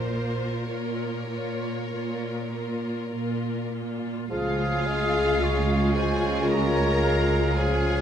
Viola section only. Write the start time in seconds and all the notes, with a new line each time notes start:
0.09 A#3 F4
0.70 A#3 F4
1.29 A#3 F4
1.92 A#3 F4
2.52 A#3 F4
3.12 A#3 F4
3.73 A#3 F4
4.32 G#3 F4